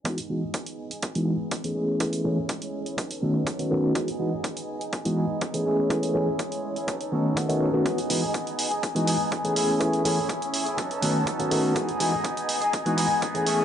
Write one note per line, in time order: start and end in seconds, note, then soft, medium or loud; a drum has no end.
0.05 0.18 E3 medium
0.05 0.18 G#3 medium
0.05 0.28 B3 medium
0.05 0.18 B3 medium
0.05 0.18 D#4 medium
0.05 0.29 D#4 medium
0.05 0.18 F#4 medium
0.05 1.74 D#5 medium
0.05 1.74 G#5 medium
0.05 kick loud
0.05 closed hi-hat medium
0.18 closed hi-hat medium
0.29 0.42 E3 medium
0.29 0.42 G#3 medium
0.29 0.42 B3 medium
0.29 0.42 D#4 medium
0.29 0.43 D#4 medium
0.29 0.43 F#4 medium
0.29 0.40 G#4 medium
0.41 0.53 D#4 soft
0.41 0.54 G#4 medium
0.53 0.91 B3 medium
0.53 0.91 D#4 medium
0.53 0.89 G#4 medium
0.53 kick loud
0.53 closed hi-hat medium
0.66 closed hi-hat medium
0.90 1.17 D#4 soft
0.90 1.14 G#4 medium
0.90 closed hi-hat soft
1.02 kick loud
1.02 closed hi-hat medium
1.15 1.35 E3 medium
1.15 1.35 G#3 medium
1.15 1.35 B3 medium
1.15 1.35 D#4 medium
1.15 1.27 D#4 soft
1.15 1.35 F#4 loud
1.15 1.27 G#4 medium
1.15 closed hi-hat medium
1.27 1.50 B3 medium
1.27 1.51 D#4 medium
1.27 1.52 G#4 medium
1.51 1.76 D#4 medium
1.51 kick loud
1.51 closed hi-hat medium
1.64 1.97 E3 medium
1.64 1.97 A3 medium
1.64 1.98 B3 medium
1.64 1.98 C#4 medium
1.64 1.98 G#4 medium
1.64 closed hi-hat medium
1.75 1.88 G#3 medium
1.75 1.89 C#4 medium
1.75 1.88 E4 medium
1.75 2.97 G#4 medium
1.75 1.87 G#4 medium
1.75 3.93 C#5 medium
1.88 1.99 C#4 soft
1.88 2.00 E4 medium
1.88 2.00 G#4 medium
2.00 2.22 E3 medium
2.00 2.23 G#3 medium
2.00 2.22 A3 medium
2.00 2.22 B3 medium
2.00 2.24 C#4 medium
2.00 2.22 C#4 medium
2.00 2.22 G#4 medium
2.00 kick loud
2.00 closed hi-hat medium
2.13 closed hi-hat soft
2.24 2.37 E3 medium
2.24 2.37 G#3 medium
2.24 2.37 A3 medium
2.24 2.37 B3 medium
2.24 2.37 C#4 medium
2.24 2.38 C#4 medium
2.24 2.37 E4 medium
2.24 2.37 G#4 medium
2.24 2.36 G#4 medium
2.37 2.48 C#4 soft
2.37 2.49 E4 medium
2.37 2.49 G#4 medium
2.49 2.86 G#3 medium
2.49 2.86 C#4 medium
2.49 2.84 G#4 medium
2.49 kick loud
2.49 closed hi-hat medium
2.62 closed hi-hat soft
2.85 2.97 C#4 soft
2.85 2.98 E4 medium
2.85 2.98 G#4 medium
2.85 closed hi-hat soft
2.97 3.10 F#3 medium
2.97 3.95 D#4 medium
2.97 3.95 B4 medium
2.97 kick loud
2.97 closed hi-hat medium
3.09 3.21 C#4 soft
3.09 3.22 D#4 medium
3.09 3.22 A4 medium
3.09 closed hi-hat soft
3.21 3.42 D#3 medium
3.21 3.45 F#3 medium
3.21 3.42 A3 medium
3.21 3.42 B3 medium
3.21 3.46 C#4 medium
3.21 3.42 C#4 medium
3.21 3.46 D#4 medium
3.21 3.42 F#4 medium
3.21 3.47 A4 medium
3.46 3.69 F#3 medium
3.46 3.70 C#4 medium
3.46 3.71 D#4 medium
3.46 kick loud
3.46 closed hi-hat medium
3.59 3.69 D#3 medium
3.59 3.69 A3 medium
3.59 3.69 B3 medium
3.59 3.69 C#4 medium
3.59 3.69 F#4 loud
3.59 closed hi-hat medium
3.70 3.93 D#3 medium
3.70 3.83 F#3 medium
3.70 3.93 A3 medium
3.70 3.93 B3 medium
3.70 3.84 C#4 medium
3.70 3.93 C#4 medium
3.70 3.83 D#4 medium
3.70 3.93 F#4 medium
3.70 3.82 A4 medium
3.83 3.94 C#4 medium
3.83 3.95 D#4 medium
3.83 3.95 A4 medium
3.95 4.18 B3 medium
3.95 5.64 D#5 medium
3.95 5.64 G#5 medium
3.95 kick loud
3.95 closed hi-hat medium
4.08 closed hi-hat soft
4.19 4.32 E3 medium
4.19 4.32 G#3 medium
4.19 4.32 B3 medium
4.19 4.33 D#4 medium
4.19 4.32 F#4 medium
4.19 4.30 G#4 medium
4.31 4.43 D#4 soft
4.31 4.44 G#4 medium
4.43 4.81 B3 medium
4.43 4.81 D#4 medium
4.43 kick loud
4.43 closed hi-hat medium
4.57 closed hi-hat soft
4.80 5.06 D#4 soft
4.80 5.03 G#4 medium
4.80 closed hi-hat soft
4.93 kick loud
4.93 closed hi-hat medium
5.04 5.25 E3 medium
5.04 5.25 G#3 medium
5.04 5.25 B3 medium
5.04 5.25 D#4 medium
5.04 5.17 D#4 medium
5.04 5.25 F#4 loud
5.04 5.17 G#4 medium
5.04 closed hi-hat soft
5.17 5.40 B3 medium
5.17 5.41 D#4 medium
5.17 5.42 G#4 medium
5.41 5.66 B3 medium
5.41 5.66 D#4 medium
5.41 5.67 G#4 loud
5.41 kick loud
5.41 closed hi-hat medium
5.54 5.87 E3 medium
5.54 5.88 A3 medium
5.54 5.88 B3 medium
5.54 5.88 C#4 medium
5.54 5.88 G#4 medium
5.54 closed hi-hat soft
5.66 5.79 G#3 medium
5.66 5.79 C#4 medium
5.66 5.78 E4 medium
5.66 6.87 G#4 medium
5.66 5.77 G#4 medium
5.66 7.84 C#5 medium
5.78 5.90 C#4 soft
5.78 5.90 E4 medium
5.78 5.90 G#4 medium
5.90 6.12 E3 medium
5.90 6.13 G#3 medium
5.90 6.12 A3 medium
5.90 6.12 B3 medium
5.90 6.12 C#4 medium
5.90 6.14 C#4 medium
5.90 6.15 E4 medium
5.90 6.12 G#4 medium
5.90 6.16 G#4 medium
5.90 kick loud
5.90 closed hi-hat medium
6.03 closed hi-hat soft
6.14 6.27 E3 medium
6.14 6.27 G#3 medium
6.14 6.27 A3 medium
6.14 6.27 B3 medium
6.14 6.28 C#4 medium
6.14 6.27 E4 medium
6.14 6.28 G#4 medium
6.14 6.25 G#4 medium
6.26 6.38 C#4 soft
6.26 6.39 E4 medium
6.26 6.39 G#4 medium
6.39 6.76 G#3 medium
6.39 6.76 C#4 medium
6.39 6.76 E4 medium
6.39 6.74 G#4 loud
6.39 kick loud
6.39 closed hi-hat medium
6.52 closed hi-hat soft
6.76 6.87 C#4 soft
6.76 6.88 E4 medium
6.76 6.88 G#4 medium
6.76 closed hi-hat soft
6.87 7.00 F#3 medium
6.87 7.01 C#4 medium
6.87 7.85 D#4 medium
6.87 7.01 D#4 medium
6.87 7.85 B4 medium
6.87 kick loud
6.87 closed hi-hat medium
7.00 7.12 C#4 medium
7.00 7.13 D#4 medium
7.00 7.12 A4 medium
7.00 closed hi-hat soft
7.12 7.32 D#3 medium
7.12 7.35 F#3 medium
7.12 7.32 A3 medium
7.12 7.32 B3 medium
7.12 7.32 C#4 medium
7.12 7.36 C#4 medium
7.12 7.37 D#4 medium
7.12 7.32 F#4 medium
7.12 7.37 A4 medium
7.36 7.46 D#3 medium
7.36 7.59 F#3 medium
7.36 7.46 A3 medium
7.36 7.46 B3 medium
7.36 7.47 C#4 medium
7.36 7.61 C#4 medium
7.36 7.61 D#4 medium
7.36 7.47 F#4 loud
7.36 kick loud
7.36 closed hi-hat medium
7.49 7.68 D#3 medium
7.49 7.69 A3 medium
7.49 7.69 B3 medium
7.49 7.69 C#4 medium
7.49 7.69 F#4 medium
7.49 closed hi-hat soft
7.60 7.73 F#3 medium
7.60 7.74 C#4 medium
7.60 7.73 D#4 medium
7.60 7.72 A4 medium
7.73 7.84 D#3 medium
7.73 7.84 A3 medium
7.73 7.84 B3 medium
7.73 7.84 C#4 medium
7.73 7.85 C#4 soft
7.73 7.85 D#4 soft
7.73 7.84 F#4 medium
7.73 7.85 A4 medium
7.85 7.98 E3 medium
7.85 7.98 G#3 medium
7.85 8.08 B3 medium
7.85 7.98 B3 medium
7.85 7.98 D#4 medium
7.85 8.10 D#4 medium
7.85 7.98 F#4 medium
7.85 8.11 G#4 medium
7.85 9.55 D#5 medium
7.85 10.75 G#5 medium
7.85 kick loud
7.85 closed hi-hat medium
7.98 closed hi-hat soft
8.09 8.22 E3 medium
8.09 8.22 G#3 medium
8.09 8.22 B3 medium
8.09 8.23 B3 medium
8.09 8.23 D#4 medium
8.09 8.23 F#4 medium
8.09 8.21 G#4 medium
8.09 open hi-hat loud
8.22 8.34 D#4 soft
8.22 8.34 G#4 medium
8.34 8.71 B3 medium
8.34 8.72 D#4 medium
8.34 kick loud
8.34 closed hi-hat medium
8.47 closed hi-hat soft
8.59 open hi-hat loud
8.71 8.97 D#4 soft
8.71 8.94 G#4 medium
8.71 closed hi-hat soft
8.83 kick loud
8.83 closed hi-hat medium
8.95 9.15 E3 medium
8.95 9.15 G#3 medium
8.95 9.15 B3 medium
8.95 9.15 D#4 medium
8.95 9.07 D#4 soft
8.95 9.15 F#4 loud
8.95 9.07 G#4 medium
8.95 closed hi-hat soft
9.06 9.30 B3 medium
9.06 9.31 D#4 medium
9.06 9.32 G#4 medium
9.06 open hi-hat loud
9.31 9.55 B3 medium
9.31 9.57 D#4 medium
9.31 9.57 G#4 medium
9.31 kick loud
9.31 closed hi-hat medium
9.44 9.78 E3 medium
9.44 9.78 A3 medium
9.44 9.78 B3 medium
9.44 9.78 C#4 medium
9.44 9.78 G#4 medium
9.44 closed hi-hat soft
9.55 10.77 A3 medium
9.55 9.69 C#4 medium
9.55 10.77 C#4 medium
9.55 9.69 E4 medium
9.55 9.67 G#4 medium
9.55 open hi-hat loud
9.68 9.80 E4 soft
9.68 9.80 G#4 medium
9.80 10.02 E3 medium
9.80 10.02 A3 medium
9.80 10.02 B3 medium
9.80 10.03 C#4 medium
9.80 10.02 C#4 medium
9.80 10.05 E4 medium
9.80 10.03 G#4 medium
9.80 10.06 G#4 medium
9.80 kick loud
9.80 closed hi-hat medium
9.93 closed hi-hat medium
10.04 10.18 E3 medium
10.04 10.18 A3 medium
10.04 10.18 B3 medium
10.04 10.17 C#4 medium
10.04 10.18 C#4 medium
10.04 10.18 E4 medium
10.04 10.18 G#4 medium
10.04 10.16 G#4 medium
10.04 open hi-hat medium
10.17 10.29 E4 soft
10.17 10.29 G#4 medium
10.29 10.66 C#4 medium
10.29 10.67 E4 medium
10.29 kick loud
10.29 closed hi-hat medium
10.42 closed hi-hat medium
10.54 open hi-hat loud
10.65 10.79 E4 medium
10.65 10.78 G#4 medium
10.65 closed hi-hat soft
10.78 10.91 F#3 medium
10.78 10.91 C#4 medium
10.78 11.75 D#4 medium
10.78 10.91 D#4 medium
10.78 10.89 A4 medium
10.78 11.75 B4 medium
10.78 11.75 C#5 medium
10.78 11.75 A5 medium
10.78 kick loud
10.78 closed hi-hat medium
10.90 11.01 C#4 medium
10.90 11.02 D#4 medium
10.90 11.02 A4 medium
10.90 closed hi-hat soft
11.02 11.22 D#3 medium
11.02 11.25 F#3 medium
11.02 11.22 A3 medium
11.02 11.22 B3 medium
11.02 11.26 C#4 medium
11.02 11.22 C#4 medium
11.02 11.27 D#4 medium
11.02 11.23 F#4 medium
11.02 11.27 A4 medium
11.02 open hi-hat loud
11.26 11.49 F#3 medium
11.26 11.50 C#4 medium
11.26 11.51 D#4 medium
11.26 11.52 A4 medium
11.26 kick loud
11.26 closed hi-hat medium
11.39 11.49 D#3 medium
11.39 11.49 A3 medium
11.39 11.50 B3 medium
11.39 11.50 C#4 medium
11.39 11.50 F#4 loud
11.39 closed hi-hat medium
11.50 11.73 D#3 medium
11.50 11.64 F#3 medium
11.50 11.73 A3 medium
11.50 11.73 B3 medium
11.50 11.73 C#4 medium
11.50 11.64 C#4 medium
11.50 11.64 D#4 medium
11.50 11.73 F#4 medium
11.50 11.62 A4 medium
11.50 open hi-hat loud
11.63 11.74 C#4 soft
11.63 11.75 D#4 medium
11.63 11.75 A4 medium
11.75 11.88 E3 medium
11.75 11.88 G#3 medium
11.75 11.98 B3 medium
11.75 11.89 B3 medium
11.75 12.00 D#4 medium
11.75 11.89 D#4 medium
11.75 11.89 F#4 medium
11.75 12.01 G#4 medium
11.75 13.45 D#5 medium
11.75 13.65 G#5 medium
11.75 kick loud
11.75 closed hi-hat medium
11.89 closed hi-hat medium
11.99 12.13 E3 medium
11.99 12.13 G#3 medium
11.99 12.12 B3 medium
11.99 12.13 B3 medium
11.99 12.13 D#4 medium
11.99 12.13 F#4 medium
11.99 12.11 G#4 medium
11.99 open hi-hat loud
12.12 12.24 D#4 medium
12.12 12.24 G#4 medium
12.24 12.61 B3 medium
12.24 12.62 D#4 medium
12.24 12.60 G#4 medium
12.24 kick loud
12.24 closed hi-hat medium
12.37 closed hi-hat medium
12.49 open hi-hat loud
12.61 12.87 D#4 soft
12.61 12.84 G#4 medium
12.61 closed hi-hat soft
12.73 kick loud
12.73 closed hi-hat medium
12.85 13.05 E3 medium
12.85 13.05 G#3 medium
12.85 13.05 B3 medium
12.85 13.05 D#4 medium
12.85 12.98 D#4 soft
12.85 13.06 F#4 loud
12.85 12.97 G#4 medium
12.85 closed hi-hat medium
12.97 13.21 B3 medium
12.97 13.22 D#4 medium
12.97 13.23 G#4 medium
12.97 open hi-hat medium
13.22 13.46 B3 medium
13.22 13.47 D#4 medium
13.22 13.48 G#4 loud
13.22 kick loud
13.22 closed hi-hat medium
13.34 13.65 E3 medium
13.34 13.65 A3 medium
13.34 13.65 B3 medium
13.34 13.65 C#4 medium
13.34 13.65 G#4 medium
13.34 closed hi-hat medium
13.46 13.59 E3 medium
13.46 13.65 A3 medium
13.46 13.60 A3 medium
13.46 13.65 C#4 medium
13.46 13.59 C#4 medium
13.46 13.57 G#4 medium
13.46 open hi-hat loud
13.59 13.65 C#4 medium
13.59 13.65 G#4 medium